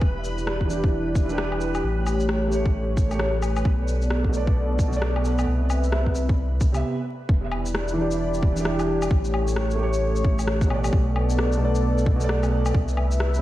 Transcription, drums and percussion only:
0.01 kick loud
0.24 shaker medium
0.38 shaker soft
0.47 cross-stick loud
0.61 kick medium
0.70 shaker medium
0.84 kick loud
1.15 kick loud
1.15 shaker soft
1.29 shaker soft
1.38 cross-stick loud
1.52 low woodblock soft
1.61 shaker medium
1.75 low woodblock medium
1.75 shaker soft
2.06 low woodblock medium
2.06 shaker medium
2.20 shaker soft
2.29 cross-stick loud
2.52 shaker soft
2.66 kick loud
2.97 kick loud
2.97 shaker medium
3.11 low woodblock soft
3.11 shaker soft
3.19 cross-stick loud
3.42 low woodblock medium
3.42 shaker medium
3.56 low woodblock medium
3.56 shaker soft
3.65 kick loud
3.88 shaker medium
4.02 shaker soft
4.10 cross-stick medium
4.25 kick medium
4.33 shaker soft
4.47 kick loud
4.79 kick loud
4.79 shaker medium
4.93 shaker soft
5.02 cross-stick loud
5.16 low woodblock medium
5.25 shaker medium
5.39 low woodblock medium
5.39 shaker soft
5.70 low woodblock medium
5.70 shaker medium
5.84 shaker soft
5.92 cross-stick loud
6.07 kick medium
6.15 shaker medium
6.29 kick loud
6.61 kick loud
6.61 shaker medium
6.74 low woodblock soft
6.74 shaker soft
7.29 kick loud
7.52 low woodblock medium
7.66 shaker medium
7.75 cross-stick loud
7.88 shaker soft
8.11 shaker medium
8.34 shaker soft
8.43 kick loud
8.57 shaker medium
8.65 cross-stick loud
8.79 low woodblock medium
8.79 shaker soft
9.02 low woodblock medium
9.02 shaker medium
9.11 kick loud
9.25 shaker soft
9.34 low woodblock medium
9.48 shaker medium
9.56 cross-stick loud
9.71 shaker soft
9.93 shaker medium
10.16 shaker soft
10.24 kick loud
10.39 low woodblock soft
10.39 shaker medium
10.47 cross-stick loud
10.61 kick loud
10.61 shaker soft
10.70 low woodblock medium
10.84 low woodblock medium
10.84 shaker medium
10.93 kick loud
11.16 low woodblock medium
11.30 shaker medium
11.39 cross-stick loud
11.52 shaker soft
11.75 shaker medium
11.98 shaker soft
12.06 kick loud
12.21 shaker medium
12.29 cross-stick loud
12.43 low woodblock soft
12.43 shaker soft
12.66 low woodblock medium
12.66 shaker medium
12.74 kick loud
12.88 shaker soft
12.97 low woodblock medium
13.11 shaker medium
13.20 cross-stick loud
13.34 shaker soft

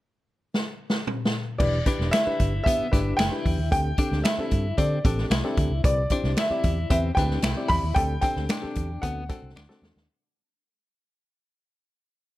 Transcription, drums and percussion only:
0.54 snare medium
0.90 snare medium
1.07 mid tom medium
1.25 snare medium
1.60 kick loud
1.60 crash medium
1.86 kick medium
1.86 closed hi-hat medium
2.00 snare soft
2.13 finger snap medium
2.13 snare loud
2.13 closed hi-hat medium
2.40 kick medium
2.40 closed hi-hat medium
2.66 kick medium
2.66 closed hi-hat loud
2.93 kick medium
2.93 snare soft
2.93 closed hi-hat medium
3.19 finger snap medium
3.19 snare loud
3.19 closed hi-hat medium
3.46 kick medium
3.46 open hi-hat medium
3.72 kick loud
3.72 closed hi-hat loud
3.98 kick medium
3.98 closed hi-hat medium
4.12 snare soft
4.24 finger snap medium
4.24 snare loud
4.24 closed hi-hat medium
4.51 kick medium
4.51 closed hi-hat medium
4.78 kick medium
4.78 closed hi-hat medium
5.05 kick loud
5.05 closed hi-hat medium
5.18 snare soft
5.31 finger snap medium
5.31 snare loud
5.31 closed hi-hat medium
5.57 kick loud
5.57 closed hi-hat medium
5.84 kick loud
5.84 closed hi-hat loud
6.10 kick medium
6.10 closed hi-hat medium
6.24 snare soft
6.36 finger snap loud
6.36 snare loud
6.36 closed hi-hat medium
6.63 kick medium
6.63 closed hi-hat medium
6.90 kick medium
6.90 closed hi-hat loud
7.17 kick loud
7.17 snare soft
7.17 closed hi-hat medium
7.30 snare soft
7.42 finger snap medium
7.42 snare loud
7.42 closed hi-hat medium
7.69 kick loud
7.69 open hi-hat medium
7.96 kick loud
7.96 closed hi-hat medium
8.21 kick medium
8.21 closed hi-hat medium
8.36 snare soft
8.49 finger snap medium
8.49 snare loud
8.49 closed hi-hat medium
8.75 kick medium
8.75 closed hi-hat medium
9.03 kick loud
9.03 closed hi-hat loud
9.29 kick medium
9.29 snare soft
9.29 closed hi-hat medium
9.57 finger snap medium
9.57 snare medium
9.70 snare medium
9.83 snare medium
9.97 snare medium

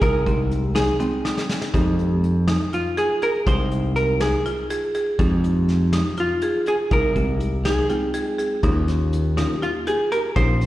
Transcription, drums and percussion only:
0.02 kick loud
0.02 closed hi-hat medium
0.26 kick medium
0.26 closed hi-hat medium
0.51 closed hi-hat medium
0.76 snare medium
0.76 closed hi-hat medium
1.00 closed hi-hat medium
1.25 snare medium
1.37 snare medium
1.49 snare medium
1.62 snare medium
1.74 kick medium
1.74 closed hi-hat medium
1.99 closed hi-hat soft
2.24 closed hi-hat soft
2.48 snare medium
2.48 closed hi-hat medium
2.73 closed hi-hat soft
2.97 closed hi-hat medium
3.22 closed hi-hat medium
3.47 kick medium
3.47 closed hi-hat medium
3.71 closed hi-hat medium
3.96 closed hi-hat medium
4.20 snare medium
4.20 closed hi-hat medium
4.46 closed hi-hat medium
4.70 closed hi-hat medium
4.94 closed hi-hat medium
5.19 kick medium
5.19 closed hi-hat medium
5.44 closed hi-hat soft
5.68 snare soft
5.68 closed hi-hat medium
5.93 snare medium
5.93 closed hi-hat medium
6.17 closed hi-hat soft
6.42 closed hi-hat medium
6.66 closed hi-hat medium
6.91 kick medium
6.91 closed hi-hat medium
7.16 kick medium
7.16 closed hi-hat medium
7.40 closed hi-hat medium
7.65 snare medium
7.65 closed hi-hat medium
7.89 closed hi-hat medium
8.14 closed hi-hat medium
8.39 closed hi-hat medium
8.63 kick medium
8.63 closed hi-hat medium
8.88 snare soft
8.88 closed hi-hat medium
9.13 closed hi-hat medium
9.38 snare medium
9.38 closed hi-hat medium
9.62 closed hi-hat medium
9.87 closed hi-hat medium
10.12 closed hi-hat medium
10.36 kick loud
10.36 closed hi-hat medium
10.61 closed hi-hat medium

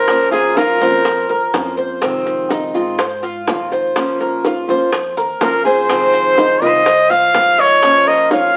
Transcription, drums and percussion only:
0.08 high bongo medium
0.08 maracas medium
0.33 high bongo soft
0.33 maracas medium
0.57 high bongo medium
0.57 maracas medium
0.81 high bongo soft
0.81 maracas soft
1.05 high bongo medium
1.05 maracas medium
1.30 high bongo soft
1.54 high bongo medium
1.54 low bongo medium
1.54 maracas medium
1.78 maracas soft
2.02 high bongo medium
2.02 maracas medium
2.26 high bongo soft
2.26 maracas medium
2.50 high bongo medium
2.50 maracas medium
2.75 high bongo soft
2.75 maracas soft
2.99 high bongo medium
2.99 maracas medium
3.23 maracas medium
3.47 high bongo medium
3.47 low bongo medium
3.47 maracas medium
3.72 high bongo soft
3.72 maracas soft
3.96 high bongo medium
3.96 maracas medium
4.20 high bongo soft
4.45 high bongo medium
4.45 maracas medium
4.69 high bongo soft
4.69 maracas soft
4.93 high bongo medium
4.93 maracas medium
5.17 high bongo soft
5.17 maracas medium
5.41 high bongo medium
5.41 low bongo medium
5.41 maracas medium
5.66 maracas soft
5.89 high bongo medium
5.89 maracas medium
6.13 high bongo soft
6.13 maracas medium
6.38 high bongo medium
6.38 maracas medium
6.62 high bongo soft
6.62 maracas soft
6.86 high bongo medium
6.86 maracas medium
7.10 maracas medium
7.34 high bongo medium
7.34 low bongo medium
7.34 maracas medium
7.59 high bongo soft
7.59 maracas soft
7.83 high bongo medium
7.83 maracas medium
8.07 high bongo soft
8.31 high bongo medium
8.31 maracas medium

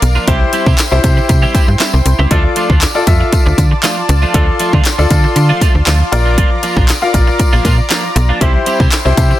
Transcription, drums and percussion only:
0.02 closed hi-hat medium
0.02 tambourine medium
0.15 tambourine soft
0.28 kick loud
0.28 closed hi-hat loud
0.53 closed hi-hat medium
0.53 tambourine soft
0.66 kick medium
0.66 tambourine soft
0.78 snare medium
0.78 clap loud
0.78 closed hi-hat medium
0.78 tambourine loud
0.92 tambourine medium
1.04 kick loud
1.04 closed hi-hat medium
1.04 tambourine soft
1.17 tambourine soft
1.29 kick loud
1.29 closed hi-hat medium
1.29 tambourine medium
1.43 tambourine soft
1.55 kick medium
1.55 closed hi-hat medium
1.55 tambourine medium
1.80 snare loud
1.80 clap loud
1.80 closed hi-hat medium
1.80 tambourine medium
2.06 closed hi-hat medium
2.06 tambourine medium
2.31 kick loud
2.31 closed hi-hat loud
2.56 closed hi-hat medium
2.56 tambourine soft
2.70 kick medium
2.82 snare medium
2.82 clap loud
2.82 closed hi-hat medium
2.82 tambourine loud
2.95 tambourine medium
3.07 kick loud
3.07 closed hi-hat medium
3.07 tambourine medium
3.32 kick medium
3.32 closed hi-hat medium
3.32 tambourine medium
3.46 tambourine soft
3.58 kick medium
3.58 closed hi-hat medium
3.58 tambourine medium
3.83 snare loud
3.83 clap loud
3.83 closed hi-hat medium
3.83 tambourine medium
4.09 closed hi-hat medium
4.09 tambourine medium
4.22 tambourine soft
4.34 kick loud
4.34 closed hi-hat loud
4.60 closed hi-hat medium
4.60 tambourine medium
4.73 kick medium
4.85 snare medium
4.85 clap loud
4.85 closed hi-hat medium
4.85 tambourine loud
4.99 tambourine medium
5.11 kick loud
5.11 closed hi-hat medium
5.11 tambourine medium
5.24 tambourine soft
5.36 closed hi-hat medium
5.36 tambourine medium
5.61 kick medium
5.61 closed hi-hat medium
5.61 tambourine medium
5.87 snare loud
5.87 clap loud
5.87 closed hi-hat medium
5.87 tambourine medium
6.13 closed hi-hat medium
6.13 tambourine medium
6.38 kick loud
6.38 closed hi-hat loud
6.63 closed hi-hat medium
6.63 tambourine soft
6.77 kick medium
6.89 snare medium
6.89 clap loud
6.89 closed hi-hat medium
6.89 tambourine loud
7.02 tambourine medium
7.14 kick loud
7.14 closed hi-hat medium
7.14 tambourine medium
7.27 tambourine soft
7.39 kick loud
7.39 closed hi-hat medium
7.39 tambourine medium
7.53 tambourine soft
7.65 kick medium
7.65 closed hi-hat medium
7.65 tambourine medium
7.90 snare loud
7.90 clap loud
7.90 closed hi-hat medium
7.90 tambourine medium
8.16 closed hi-hat medium
8.16 tambourine medium
8.41 kick loud
8.41 closed hi-hat loud
8.66 closed hi-hat medium
8.66 tambourine medium
8.80 kick medium
8.80 tambourine soft
8.92 snare medium
8.92 clap loud
8.92 closed hi-hat medium
8.92 tambourine loud
9.06 tambourine medium
9.17 kick loud
9.17 closed hi-hat medium
9.17 tambourine medium
9.31 tambourine soft

